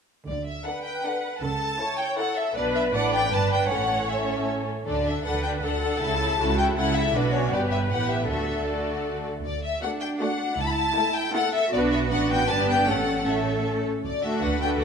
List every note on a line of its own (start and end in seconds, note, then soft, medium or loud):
0.27 0.58 D2 soft
0.27 0.58 D3 soft
0.27 0.46 D5 soft
0.47 0.66 E5 medium
0.65 0.94 D4 soft
0.65 0.94 A4 soft
0.65 1.38 B4 soft
0.65 0.85 F#5 medium
0.84 1.03 G5 medium
1.04 1.33 D4 soft
1.04 1.32 A4 soft
1.04 1.42 F#5 soft
1.41 1.72 C#2 soft
1.41 1.72 C#3 medium
1.41 1.80 A4 soft
1.41 1.98 A5 medium
1.80 2.08 E4 soft
1.80 2.08 A4 soft
1.80 2.18 C#5 soft
1.98 2.18 G5 medium
2.17 2.46 E4 soft
2.17 2.46 A4 soft
2.17 2.56 A4 medium
2.17 2.36 F#5 medium
2.35 2.55 E5 medium
2.55 2.91 B1 soft
2.55 2.91 B2 medium
2.55 2.91 D4 medium
2.55 2.93 B4 medium
2.55 2.91 B4 medium
2.55 2.64 D5 medium
2.75 2.83 E5 medium
2.93 3.31 A1 medium
2.93 3.32 A2 soft
2.93 3.31 D4 soft
2.93 3.31 B4 medium
2.93 3.32 D5 medium
2.93 3.13 F#5 medium
3.14 3.32 G5 medium
3.30 3.69 G1 soft
3.30 3.70 G2 medium
3.30 3.69 D4 soft
3.30 3.69 B4 medium
3.30 3.69 B4 soft
3.30 3.51 A5 medium
3.52 3.70 G5 medium
3.69 4.67 A1 soft
3.69 4.67 A2 soft
3.69 4.08 C#4 soft
3.69 4.07 A4 soft
3.69 4.67 C#5 soft
3.69 4.08 F#5 medium
4.09 4.66 C#4 soft
4.09 4.66 A4 soft
4.09 4.49 E5 soft
4.86 5.20 D2 soft
4.86 5.20 D3 soft
4.86 5.04 D4 soft
4.86 5.04 A4 soft
4.86 5.05 D5 medium
5.05 5.24 D4 soft
5.05 5.23 A4 soft
5.05 5.25 E5 medium
5.25 5.58 D2 soft
5.25 5.59 D3 soft
5.25 5.42 D4 soft
5.25 5.42 A4 soft
5.25 5.61 B4 soft
5.25 5.43 F#5 medium
5.42 5.61 D4 soft
5.42 5.61 A4 soft
5.42 5.50 G5 soft
5.62 5.97 D2 soft
5.62 5.97 D3 soft
5.62 5.80 D4 soft
5.62 5.80 A4 soft
5.62 6.39 A4 medium
5.62 6.00 F#5 medium
5.82 6.00 D4 soft
5.82 6.00 A4 soft
6.00 6.35 C#2 medium
6.00 6.35 C#3 medium
6.00 6.20 E4 soft
6.00 6.20 A4 soft
6.00 6.58 A5 medium
6.21 6.39 E4 soft
6.21 6.39 A4 soft
6.39 6.73 C#2 medium
6.39 6.73 C#3 soft
6.39 6.58 E4 soft
6.39 6.77 F#4 soft
6.39 6.58 A4 soft
6.58 6.77 E4 soft
6.58 6.76 A4 soft
6.58 6.65 G5 medium
6.77 7.11 C#2 medium
6.77 7.11 C#3 medium
6.77 7.15 E4 medium
6.77 6.95 E4 medium
6.77 6.95 A4 soft
6.77 6.96 F#5 medium
6.96 7.15 E4 soft
6.96 7.15 A4 soft
6.96 7.15 E5 medium
7.14 7.50 B1 soft
7.14 7.50 B2 medium
7.14 7.52 D4 medium
7.14 7.23 D4 soft
7.14 7.51 F#4 medium
7.14 7.34 B4 medium
7.33 7.52 C#4 soft
7.33 7.53 C#5 medium
7.52 7.91 G1 medium
7.52 7.91 G2 soft
7.52 7.90 B3 soft
7.52 7.90 G4 soft
7.52 8.29 B4 medium
7.52 7.60 D5 medium
7.71 7.79 E5 medium
7.90 8.30 A1 soft
7.90 8.29 A2 soft
7.90 8.29 B3 soft
7.90 8.29 G4 soft
7.90 8.09 F#5 medium
8.11 8.29 E5 medium
8.29 9.27 D2 soft
8.29 9.27 D3 soft
8.29 8.68 A3 soft
8.29 8.68 F#4 soft
8.29 9.26 A4 soft
8.29 8.68 E5 medium
8.68 9.26 A3 soft
8.68 9.26 F#4 soft
8.68 9.26 D5 soft
9.45 9.75 D2 medium
9.45 9.63 D5 medium
9.64 9.83 E5 medium
9.82 10.12 A3 soft
9.82 10.56 D4 soft
9.82 10.12 F#4 soft
9.82 10.12 A4 soft
9.82 10.12 D5 soft
9.82 9.90 F#5 medium
10.01 10.09 G5 medium
10.20 10.50 A3 medium
10.20 10.50 F#4 medium
10.20 10.50 A4 soft
10.20 10.50 D5 soft
10.20 10.58 F#5 medium
10.59 10.89 C#2 medium
10.59 11.35 E4 medium
10.59 10.67 A5 medium
10.66 10.73 B5 medium
10.72 11.15 A5 medium
10.96 11.25 A3 soft
10.96 11.25 E4 soft
10.96 11.25 A4 soft
10.96 11.25 E5 medium
11.15 11.35 G5 medium
11.34 11.63 A3 medium
11.34 11.63 E4 medium
11.34 11.72 A4 medium
11.34 11.64 A4 medium
11.34 11.63 E5 medium
11.34 11.53 F#5 medium
11.54 11.73 E5 medium
11.72 12.08 B1 medium
11.72 12.08 B3 medium
11.72 12.08 D4 medium
11.72 12.47 F#4 medium
11.72 12.08 F#4 medium
11.72 12.08 B4 medium
11.72 11.81 D5 medium
11.92 12.00 E5 medium
12.10 12.49 A1 medium
12.10 12.47 B3 soft
12.10 12.47 D4 soft
12.10 12.48 F#4 soft
12.10 12.48 B4 medium
12.10 12.30 F#5 medium
12.31 12.49 G5 medium
12.48 12.88 G1 soft
12.48 12.87 B3 medium
12.48 12.87 D4 medium
12.48 12.87 G4 soft
12.48 12.87 B4 medium
12.48 12.88 D5 soft
12.48 12.68 A5 medium
12.69 12.88 G5 medium
12.88 13.85 A1 soft
12.88 13.25 A3 soft
12.88 13.25 C#4 soft
12.88 13.83 A4 soft
12.88 13.25 A4 soft
12.88 13.27 F#5 medium
13.26 13.84 A3 soft
13.26 13.84 C#4 soft
13.26 13.84 A4 soft
13.26 13.67 E5 medium
14.05 14.37 D2 soft
14.05 14.23 D5 medium
14.23 14.61 A3 soft
14.23 14.61 D4 soft
14.23 14.61 F#4 soft
14.23 14.61 A4 soft
14.23 14.43 E5 medium
14.42 14.74 D2 medium
14.42 14.78 B4 medium
14.42 14.62 F#5 medium
14.62 14.84 A3 soft
14.62 14.84 D4 soft
14.62 14.84 F#4 soft
14.62 14.84 A4 soft
14.62 14.69 G5 medium
14.80 14.84 D2 medium
14.80 14.84 A4 soft